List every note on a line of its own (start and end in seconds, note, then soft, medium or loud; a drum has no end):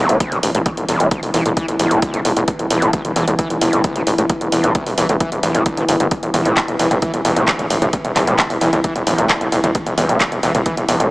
0.00 0.11 E2 loud
0.00 11.11 E3 medium
0.09 0.16 E1 medium
0.09 0.18 A#2 medium
0.09 closed hi-hat medium
0.20 0.33 D2 medium
0.20 kick loud
0.20 closed hi-hat medium
0.32 0.39 D1 medium
0.32 0.38 E3 medium
0.32 closed hi-hat medium
0.43 0.51 D1 loud
0.43 open hi-hat loud
0.55 0.62 D1 medium
0.55 0.58 A2 medium
0.55 closed hi-hat medium
0.66 0.70 E2 medium
0.66 kick loud
0.66 closed hi-hat medium
0.77 0.85 E1 medium
0.77 closed hi-hat medium
0.88 0.96 E1 loud
0.88 1.02 E2 loud
0.88 open hi-hat loud
1.00 1.07 E1 loud
1.00 1.09 A#2 medium
1.00 closed hi-hat medium
1.11 1.21 D2 medium
1.11 kick loud
1.11 closed hi-hat medium
1.23 1.30 E1 medium
1.23 open hi-hat medium
1.34 1.42 E1 loud
1.34 1.44 E3 medium
1.34 open hi-hat loud
1.46 1.53 E1 medium
1.46 1.49 A2 loud
1.46 closed hi-hat medium
1.57 1.66 E3 medium
1.57 kick loud
1.57 closed hi-hat medium
1.68 1.72 E1 medium
1.68 1.76 E1 medium
1.68 closed hi-hat medium
1.79 1.87 D1 loud
1.79 1.93 E2 loud
1.79 open hi-hat loud
1.91 1.98 E1 medium
1.91 2.00 A#2 medium
1.91 closed hi-hat medium
2.02 2.15 D2 medium
2.02 kick loud
2.02 closed hi-hat medium
2.14 2.21 E1 medium
2.14 2.20 E3 medium
2.14 closed hi-hat medium
2.25 2.33 E1 loud
2.25 open hi-hat loud
2.37 2.44 E1 loud
2.37 2.40 A2 medium
2.37 closed hi-hat medium
2.48 2.52 E2 medium
2.48 kick loud
2.48 closed hi-hat medium
2.59 2.67 E1 medium
2.59 closed hi-hat medium
2.70 2.78 E1 loud
2.70 2.84 E2 loud
2.70 open hi-hat loud
2.82 2.89 E1 medium
2.82 2.91 A#2 medium
2.82 closed hi-hat medium
2.93 3.03 D2 medium
2.93 kick loud
2.93 closed hi-hat medium
3.05 3.12 E1 medium
3.05 closed hi-hat medium
3.16 3.23 E1 loud
3.16 3.26 E3 medium
3.16 open hi-hat loud
3.28 3.35 E1 loud
3.28 3.31 A2 loud
3.28 closed hi-hat medium
3.39 3.48 E3 medium
3.39 kick loud
3.39 closed hi-hat medium
3.50 3.57 E1 medium
3.50 3.54 E1 medium
3.50 closed hi-hat medium
3.61 3.69 E1 loud
3.61 3.75 E2 loud
3.61 open hi-hat loud
3.73 3.80 E1 medium
3.73 3.82 A#2 medium
3.73 closed hi-hat medium
3.84 3.97 D2 medium
3.84 kick loud
3.84 closed hi-hat medium
3.96 4.03 D1 medium
3.96 4.02 E3 medium
3.96 closed hi-hat medium
4.07 4.14 D1 loud
4.07 open hi-hat loud
4.18 4.26 D1 medium
4.18 4.22 A2 medium
4.18 closed hi-hat medium
4.30 4.33 E2 medium
4.30 kick loud
4.30 closed hi-hat medium
4.41 4.48 E1 medium
4.41 closed hi-hat medium
4.52 4.60 E1 medium
4.52 4.65 E2 medium
4.52 open hi-hat loud
4.64 4.71 E1 loud
4.64 4.73 A#2 medium
4.64 closed hi-hat medium
4.75 4.85 D2 medium
4.75 kick loud
4.75 closed hi-hat medium
4.86 4.94 E1 medium
4.86 open hi-hat medium
4.98 5.05 E1 loud
4.98 5.07 E3 medium
4.98 open hi-hat loud
5.09 5.17 E1 medium
5.09 5.13 A2 loud
5.09 closed hi-hat soft
5.20 5.30 E3 medium
5.20 kick loud
5.20 closed hi-hat medium
5.32 5.36 E1 medium
5.32 5.39 E1 medium
5.32 closed hi-hat medium
5.43 5.51 D1 loud
5.43 5.56 E2 loud
5.43 open hi-hat loud
5.55 5.62 E1 medium
5.55 5.64 A#2 medium
5.55 closed hi-hat medium
5.66 5.79 D2 medium
5.66 kick loud
5.66 closed hi-hat medium
5.77 5.85 G1 medium
5.77 5.84 E3 medium
5.77 closed hi-hat medium
5.89 5.96 G1 loud
5.89 open hi-hat loud
6.00 6.07 G1 medium
6.00 6.04 A2 medium
6.00 closed hi-hat medium
6.11 6.15 E2 medium
6.11 kick loud
6.11 closed hi-hat medium
6.23 6.30 E1 medium
6.23 closed hi-hat soft
6.34 6.42 E1 loud
6.34 6.47 E2 medium
6.34 mid tom loud
6.34 open hi-hat loud
6.45 6.53 E1 medium
6.45 6.55 A#2 medium
6.45 closed hi-hat soft
6.57 6.66 D2 medium
6.57 kick loud
6.57 clap loud
6.57 closed hi-hat medium
6.68 6.76 E1 medium
6.68 closed hi-hat soft
6.79 6.87 E1 loud
6.79 6.89 E3 medium
6.79 open hi-hat loud
6.91 6.98 E1 medium
6.91 6.95 A2 loud
6.91 closed hi-hat soft
6.91 mid tom medium
7.02 7.12 E3 medium
7.02 kick loud
7.02 closed hi-hat medium
7.14 7.21 E1 medium
7.14 7.18 E1 medium
7.14 closed hi-hat medium
7.25 7.32 E1 loud
7.25 7.38 E2 loud
7.25 open hi-hat loud
7.36 7.44 E1 medium
7.36 7.46 A#2 medium
7.36 closed hi-hat soft
7.48 7.61 D2 medium
7.48 kick loud
7.48 clap loud
7.48 closed hi-hat medium
7.59 7.66 D1 medium
7.59 7.65 E3 medium
7.59 closed hi-hat soft
7.70 7.78 D1 loud
7.70 open hi-hat loud
7.82 7.89 D1 loud
7.82 7.86 A2 medium
7.82 closed hi-hat soft
7.82 mid tom loud
7.93 7.97 E2 medium
7.93 kick loud
7.93 closed hi-hat medium
8.05 8.12 E1 loud
8.05 closed hi-hat soft
8.16 8.23 E1 loud
8.16 8.29 E2 loud
8.16 clap soft
8.16 mid tom loud
8.16 open hi-hat loud
8.27 8.35 E1 medium
8.27 8.37 A#2 medium
8.27 closed hi-hat soft
8.39 kick loud
8.39 clap loud
8.39 closed hi-hat medium
8.50 8.57 E1 medium
8.50 open hi-hat medium
8.61 8.69 E1 loud
8.61 8.71 E3 medium
8.61 open hi-hat loud
8.73 8.80 E1 loud
8.73 8.77 A2 loud
8.73 closed hi-hat medium
8.73 mid tom medium
8.84 8.94 E3 medium
8.84 kick loud
8.84 closed hi-hat medium
8.96 9.03 E1 medium
8.96 8.99 E1 medium
8.96 closed hi-hat medium
9.07 9.14 D1 loud
9.07 9.20 E2 loud
9.07 open hi-hat loud
9.18 9.26 E1 medium
9.18 9.28 A#2 medium
9.18 closed hi-hat medium
9.30 kick loud
9.30 clap loud
9.30 closed hi-hat medium
9.41 9.48 E1 medium
9.41 9.47 E3 medium
9.41 closed hi-hat medium
9.52 9.60 E1 loud
9.52 open hi-hat loud
9.64 9.71 E1 medium
9.64 9.68 A2 medium
9.64 closed hi-hat medium
9.64 mid tom medium
9.75 9.79 E2 medium
9.75 kick loud
9.75 closed hi-hat medium
9.87 9.94 E1 medium
9.87 closed hi-hat medium
9.98 10.05 E1 loud
9.98 10.11 E2 loud
9.98 mid tom loud
9.98 open hi-hat loud
10.09 10.17 E1 medium
10.09 10.19 A#2 medium
10.09 closed hi-hat soft
10.20 10.30 D2 medium
10.20 kick loud
10.20 clap loud
10.20 closed hi-hat medium
10.32 10.39 E1 medium
10.32 closed hi-hat soft
10.43 10.51 E1 loud
10.43 10.53 E3 medium
10.43 open hi-hat loud
10.55 10.62 E1 medium
10.55 10.59 A2 loud
10.55 closed hi-hat medium
10.55 mid tom medium
10.66 10.75 E3 medium
10.66 kick loud
10.66 closed hi-hat medium
10.77 10.81 E1 medium
10.77 10.85 E1 medium
10.77 closed hi-hat medium
10.89 10.96 E1 loud
10.89 11.02 E2 loud
10.89 open hi-hat loud
11.00 11.07 E1 medium
11.00 11.09 A#2 medium
11.00 closed hi-hat medium